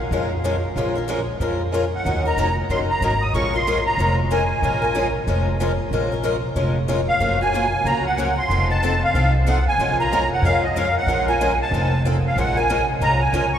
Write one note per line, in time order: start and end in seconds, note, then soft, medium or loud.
0.11 0.63 F2 medium
0.11 0.32 F3 medium
0.11 0.32 G#3 medium
0.11 0.32 C#4 medium
0.11 0.32 F4 medium
0.11 0.32 A#4 medium
0.44 0.55 F3 medium
0.44 0.55 G#3 medium
0.44 0.55 C#4 medium
0.44 0.55 F4 medium
0.44 0.55 A#4 medium
0.76 1.27 A#1 medium
0.76 0.95 F3 medium
0.76 0.95 G#3 medium
0.76 0.95 C#4 medium
0.76 0.96 F4 medium
0.76 0.94 A#4 medium
0.95 1.08 C#4 soft
0.95 1.08 F4 soft
0.95 1.07 A#4 soft
1.08 1.19 F3 medium
1.08 1.19 G#3 medium
1.08 1.19 C#4 medium
1.08 1.19 F4 medium
1.08 1.19 A#4 medium
1.40 1.92 F2 medium
1.40 1.61 F3 medium
1.40 1.61 G#3 medium
1.40 1.61 C#4 medium
1.40 1.61 F4 medium
1.40 1.61 A#4 medium
1.74 1.84 F3 medium
1.74 1.84 G#3 medium
1.74 1.84 C#4 medium
1.74 1.84 F4 medium
1.74 1.85 A#4 medium
1.95 2.24 F#5 medium
2.05 2.31 D#2 medium
2.05 2.24 D#3 medium
2.05 2.24 F#3 medium
2.05 2.24 C#4 medium
2.05 2.25 D#4 medium
2.05 2.24 A#4 medium
2.25 2.38 C#4 soft
2.25 2.37 D#4 soft
2.25 2.37 A#4 soft
2.25 2.56 A#5 medium
2.37 2.64 F1 medium
2.37 2.48 D#3 medium
2.37 2.48 F#3 medium
2.37 2.49 C#4 medium
2.37 2.49 D#4 medium
2.37 2.49 A#4 medium
2.69 2.97 F#1 medium
2.69 2.90 D#3 medium
2.69 2.90 F#3 medium
2.69 2.90 C#4 medium
2.69 2.90 D#4 medium
2.69 2.90 A#4 medium
2.69 2.79 C6 medium
2.90 3.23 A#5 medium
3.01 3.29 G#1 medium
3.01 3.13 D#3 medium
3.01 3.13 F#3 medium
3.01 3.13 C#4 medium
3.01 3.13 D#4 medium
3.01 3.13 A#4 medium
3.22 3.33 D#6 medium
3.34 3.85 A#1 medium
3.34 3.53 F3 medium
3.34 3.53 G#3 medium
3.34 3.53 C#4 medium
3.34 3.53 F4 medium
3.34 3.52 A#4 medium
3.34 3.54 C#6 medium
3.54 3.67 C#4 soft
3.54 3.66 F4 soft
3.54 3.66 A#4 soft
3.54 3.84 C6 medium
3.67 3.77 F3 medium
3.67 3.77 G#3 medium
3.67 3.78 C#4 medium
3.67 3.78 F4 medium
3.67 3.78 A#4 medium
3.86 4.16 A#5 medium
3.97 4.49 F1 medium
3.97 4.19 F3 medium
3.97 4.19 G#3 medium
3.97 4.19 C#4 medium
3.97 4.20 F4 medium
3.97 4.20 A#4 medium
4.31 4.41 F3 medium
4.31 4.42 G#3 medium
4.31 4.42 C#4 medium
4.31 4.42 F4 medium
4.31 4.42 A#4 medium
4.31 4.61 G#5 medium
4.62 5.14 A#1 medium
4.62 4.82 F3 medium
4.62 4.82 G#3 medium
4.62 4.82 C#4 medium
4.62 4.82 F4 medium
4.62 4.81 A#4 medium
4.62 5.11 G#5 medium
4.82 4.94 C#4 soft
4.82 4.94 F4 soft
4.82 4.94 A#4 soft
4.95 5.06 F3 medium
4.95 5.06 G#3 medium
4.95 5.06 C#4 medium
4.95 5.06 F4 medium
4.95 5.06 A#4 medium
5.27 5.79 F1 medium
5.27 5.48 F3 medium
5.27 5.48 G#3 medium
5.27 5.48 C#4 medium
5.27 5.48 F4 medium
5.27 5.48 A#4 medium
5.60 5.71 F3 medium
5.60 5.71 G#3 medium
5.60 5.71 C#4 medium
5.60 5.72 F4 medium
5.60 5.72 A#4 medium
5.91 6.43 A#1 medium
5.91 6.11 F3 medium
5.91 6.11 G#3 medium
5.91 6.11 C#4 medium
5.91 6.11 F4 medium
5.91 6.11 A#4 medium
6.12 6.23 C#4 soft
6.12 6.24 F4 soft
6.12 6.24 A#4 soft
6.23 6.35 F3 medium
6.23 6.35 G#3 medium
6.23 6.35 C#4 medium
6.23 6.35 F4 medium
6.23 6.35 A#4 medium
6.56 7.08 F1 medium
6.56 6.76 F3 medium
6.56 6.76 G#3 medium
6.56 6.76 C#4 medium
6.56 6.77 F4 medium
6.56 6.77 A#4 medium
6.88 6.99 F3 medium
6.88 6.99 G#3 medium
6.88 7.00 C#4 medium
6.88 7.00 F4 medium
6.88 7.00 A#4 medium
7.08 7.38 F5 medium
7.20 7.72 F#1 medium
7.20 7.39 C#3 medium
7.20 7.39 F3 medium
7.20 7.41 F#3 medium
7.20 7.39 A#3 medium
7.20 7.40 C#4 medium
7.20 7.42 F4 medium
7.20 7.40 F#4 medium
7.20 7.42 A#4 medium
7.41 7.54 A#3 soft
7.41 7.54 C#4 soft
7.41 7.53 F#4 soft
7.41 7.87 G#5 medium
7.52 7.65 C#3 medium
7.52 7.65 F3 medium
7.52 7.64 F#3 medium
7.52 7.65 A#3 medium
7.52 7.65 C#4 medium
7.52 7.64 F4 medium
7.52 7.65 F#4 medium
7.52 7.64 A#4 medium
7.84 8.36 C#2 medium
7.84 8.06 C#3 soft
7.84 8.06 F3 medium
7.84 8.05 F#3 medium
7.84 8.06 A#3 medium
7.84 8.06 C#4 medium
7.84 8.06 F4 medium
7.84 8.07 F#4 medium
7.84 8.06 A#4 medium
7.84 8.06 A#5 medium
8.06 8.39 F#5 medium
8.17 8.29 C#3 medium
8.17 8.29 F3 medium
8.17 8.28 F#3 medium
8.17 8.29 A#3 medium
8.17 8.29 C#4 medium
8.17 8.29 F4 medium
8.17 8.30 F#4 medium
8.17 8.29 A#4 medium
8.38 8.68 C6 medium
8.49 9.01 F1 medium
8.49 8.69 F3 medium
8.49 8.69 C4 medium
8.49 8.69 D#4 medium
8.49 8.69 A4 medium
8.70 8.82 C4 soft
8.70 8.83 D#4 soft
8.70 8.82 A4 soft
8.70 9.03 A5 medium
8.83 8.93 F3 medium
8.83 8.94 C4 medium
8.83 8.94 D#4 medium
8.83 8.94 A4 medium
9.04 9.33 F5 medium
9.14 9.66 C2 medium
9.14 9.35 F3 medium
9.14 9.35 C4 medium
9.14 9.35 D#4 medium
9.14 9.35 A4 medium
9.46 9.57 F3 medium
9.46 9.58 C4 medium
9.46 9.58 D#4 medium
9.46 9.58 A4 medium
9.46 9.65 F#5 medium
9.68 9.97 G#5 medium
9.78 10.30 A#1 medium
9.78 9.98 F3 medium
9.78 9.98 G#3 medium
9.78 9.98 C#4 medium
9.78 9.98 F4 medium
9.78 9.99 A#4 medium
10.00 10.12 C#4 soft
10.00 10.12 F4 soft
10.00 10.11 A#4 medium
10.00 10.29 A#5 medium
10.13 10.23 F3 medium
10.13 10.23 G#3 medium
10.13 10.23 C#4 medium
10.13 10.23 F4 medium
10.13 10.23 A#4 medium
10.33 10.45 F#5 medium
10.42 10.94 F2 medium
10.42 10.64 F3 medium
10.42 10.65 G#3 medium
10.42 10.64 F5 medium
10.46 10.65 C#4 medium
10.46 10.65 F4 medium
10.46 10.65 A#4 medium
10.64 10.76 D#5 medium
10.76 10.87 F3 medium
10.76 10.87 G#3 medium
10.76 10.87 C#4 medium
10.76 10.87 F4 medium
10.76 10.87 A#4 medium
10.76 10.96 F5 medium
10.97 11.26 F#5 medium
11.06 11.59 A#1 medium
11.06 11.27 F3 medium
11.06 11.27 G#3 medium
11.06 11.27 C#4 medium
11.06 11.28 F4 medium
11.06 11.27 A#4 medium
11.28 11.40 C#4 soft
11.28 11.40 F4 soft
11.28 11.40 A#4 medium
11.28 11.58 G#5 medium
11.41 11.51 F3 medium
11.41 11.51 G#3 medium
11.41 11.51 C#4 medium
11.41 11.52 F4 medium
11.41 11.52 A#4 medium
11.62 12.03 A5 medium
11.71 12.23 F1 medium
11.71 11.93 F3 medium
11.71 11.93 C4 medium
11.71 11.94 D#4 medium
11.71 11.94 A4 medium
12.05 12.16 F3 medium
12.05 12.16 C4 medium
12.05 12.16 D#4 medium
12.05 12.16 A4 medium
12.27 12.39 F5 medium
12.36 12.88 A#1 medium
12.36 12.56 F3 medium
12.36 12.56 G#3 medium
12.36 12.56 C#4 medium
12.36 12.56 F4 medium
12.36 12.56 A#4 medium
12.36 12.57 F#5 medium
12.56 12.69 C#4 soft
12.56 12.69 F4 soft
12.56 12.69 A#4 medium
12.56 12.86 G#5 medium
12.70 12.80 F3 medium
12.70 12.80 G#3 medium
12.70 12.80 C#4 medium
12.70 12.80 F4 medium
12.70 12.80 A#4 medium
13.00 13.28 C2 medium
13.00 13.21 F3 medium
13.00 13.21 G#3 medium
13.00 13.22 C#4 medium
13.00 13.22 F4 medium
13.00 13.22 A#4 medium
13.00 13.22 A#5 loud
13.21 13.51 G#5 medium
13.33 13.59 C#2 medium
13.33 13.44 F3 medium
13.33 13.44 G#3 medium
13.33 13.44 C#4 medium
13.33 13.45 F4 medium
13.33 13.45 A#4 medium
13.54 13.59 C#6 medium